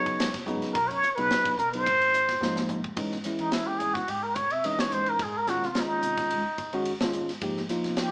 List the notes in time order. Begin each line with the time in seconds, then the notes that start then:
Already playing: C#3 F#3 B3 D#4 C#5
0.06 kick, ride
0.19 C#2, snare, ride
0.34 kick, snare, ride
0.46 G#1 C#3 F#3 B3 D#4, hi-hat pedal
0.62 snare, ride
0.73 B1 A#4, kick, ride
0.88 F#2 C#5, ride
1.02 muted upright bass stroke, hi-hat pedal
1.15 B2 C#3 F#3 B3 D#4 B4, ride
1.30 snare, ride
1.45 muted upright bass stroke, kick, ride
1.57 B2 A#4, hi-hat pedal
1.72 C#3 F#3 B3 D#4 C5, ride
1.86 G#1, kick, ride
2.02 ride
2.14 hi-hat pedal
2.29 kick, snare, ride
2.41 G#2 C3 F3 A#3 D#4, snare
2.56 snare
2.69 hi-hat pedal, mid tom
2.84 kick
2.96 G#2 E3 G#3 C#4 D#4, kick, ride
3.12 snare
3.24 E3 G#3 C#4 E4, snare, hi-hat pedal, ride
3.39 E3 D#4, ride
3.52 E4, snare, ride
3.67 G4
3.78 G#2 G#4, hi-hat pedal, ride
3.94 F#4, kick, snare
4.08 G#2 G4, ride
4.23 A#4
4.35 C#5, kick, hi-hat pedal, ride
4.50 C3 E5, ride
4.64 E3 G#3 C#4 D#4 D#5, ride
4.78 C#5, muted upright bass stroke, snare
4.91 G#2 C5, hi-hat pedal, ride
5.06 A#4, ride
5.19 G#2 G#4, kick, ride
5.37 A#4
5.47 D#3 G#3 C#4 F4 F#4, snare, hi-hat pedal, ride
5.62 C3 F4, snare
5.75 D#3 G#3 C#4 F4, snare, ride
5.80 D#4
5.89 muted upright bass stroke
6.01 C3, hi-hat pedal, ride
6.17 muted upright bass stroke, kick, snare, ride
6.29 C#2, ride
6.58 muted upright bass stroke, kick, hi-hat pedal, ride
6.73 G#2 D#3 G#3 C#4 F#4, ride
6.85 ride
7.01 D#3 G#3 C#4 F4, kick, snare
7.13 G#2, hi-hat pedal, ride
7.29 snare, ride
7.41 G#2 F3 A#3 D#4 G4, kick, ride
7.57 snare
7.69 F3 A#3 D#4 F4, snare, hi-hat pedal, ride
7.84 C3, snare, ride
7.97 G4, snare, ride